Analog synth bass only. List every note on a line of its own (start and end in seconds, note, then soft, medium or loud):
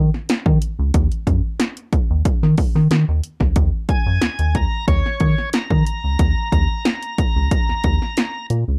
0.00 0.10 D#3 loud
0.46 0.59 D#3 loud
0.79 0.91 C#2 loud
0.94 1.09 D#2 loud
1.27 1.41 F#2 medium
1.93 2.00 D#2 soft
2.10 2.23 D#2 medium
2.43 2.55 D#3 loud
2.75 2.88 D#3 medium
2.91 3.05 D#3 loud
3.08 3.21 D#2 medium
3.41 3.53 C#2 medium
3.56 3.71 D#2 loud
4.06 4.19 F#2 medium
4.22 4.29 D#2 soft
4.39 4.66 D#2 medium
4.88 5.02 D#2 medium
5.21 5.35 D#3 loud
5.71 5.83 D#3 loud
6.04 6.17 C#2 medium
6.19 6.34 D#2 loud
6.52 6.67 D#2 loud
7.19 7.26 C#2 soft
7.36 7.49 C#2 medium
7.68 7.75 D#2 soft
7.84 7.98 D#2 loud
8.50 8.64 A#2 loud
8.68 8.79 C#2 medium